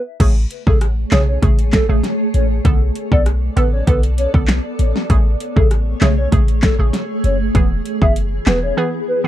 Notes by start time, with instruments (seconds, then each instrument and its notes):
0.20 808-style bass A1, synth pluck C#3 A3 G#4, ambient pad A3 G#4 C#5, kick, closed hi-hat, crash
0.51 closed hi-hat
0.67 808-style bass A1, synth pluck C#3 A3 G#4, soft synth lead A4, kick
0.81 cross-stick, closed hi-hat
1.11 808-style bass B1, synth pluck C#3 A3 G#4, soft synth lead C#5, snare, clap, closed hi-hat
1.28 soft synth lead C#5
1.42 808-style bass A1, synth pluck C#3 A3 G#4, kick, closed hi-hat
1.59 closed hi-hat
1.73 soft synth lead A4, kick, snare, clap, closed hi-hat
1.89 808-style bass A1, synth pluck C#3 A3 G#4
2.04 snare, closed hi-hat
2.34 808-style bass A1, soft synth lead C#5, closed hi-hat
2.65 808-style bass B1, synth pluck D3 B3 A4, ambient pad B3 A4 D5, kick, closed hi-hat
2.95 closed hi-hat
3.12 808-style bass B1, synth pluck D3 B3 A4, soft synth lead D5, kick
3.26 cross-stick, closed hi-hat
3.56 808-style bass A1, synth pluck D3 B3 A4, soft synth lead B4, closed hi-hat
3.73 soft synth lead C#5
3.87 808-style bass B1, synth pluck D3 B3 A4, soft synth lead B4, kick, closed hi-hat
4.03 closed hi-hat
4.18 soft synth lead C#5, closed hi-hat
4.34 808-style bass B1, synth pluck D3 B3 A4, kick
4.48 snare, clap, closed hi-hat
4.79 808-style bass A1, closed hi-hat
4.96 snare
5.09 808-style bass A1, synth pluck C#3 A3 G#4, ambient pad A3 G#4 C#5, kick, closed hi-hat
5.40 closed hi-hat
5.56 808-style bass A1, synth pluck C#3 A3 G#4, soft synth lead A4, kick
5.71 cross-stick, closed hi-hat
6.01 808-style bass B1, synth pluck C#3 A3 G#4, soft synth lead C#5, snare, clap, closed hi-hat
6.18 soft synth lead C#5
6.32 808-style bass A1, synth pluck C#3 A3 G#4, kick, closed hi-hat
6.48 closed hi-hat
6.62 soft synth lead A4, kick, snare, clap, closed hi-hat
6.79 808-style bass A1, synth pluck C#3 A3 G#4
6.93 snare, closed hi-hat
7.24 808-style bass F#1, soft synth lead C#5, closed hi-hat
7.55 808-style bass E1, synth pluck E3 B3 G#4, ambient pad E3 B3, kick, closed hi-hat
7.85 closed hi-hat
8.02 808-style bass F#1, synth pluck E3 B3 G#4, soft synth lead E5, kick
8.16 closed hi-hat
8.46 808-style bass E1, synth pluck E3 B3 G#4, soft synth lead B4, snare, clap, closed hi-hat
8.63 soft synth lead C#5
8.77 synth pluck E3 B3 G#4, soft synth lead B4
9.08 soft synth lead B4
9.24 synth pluck E3 B3 G#4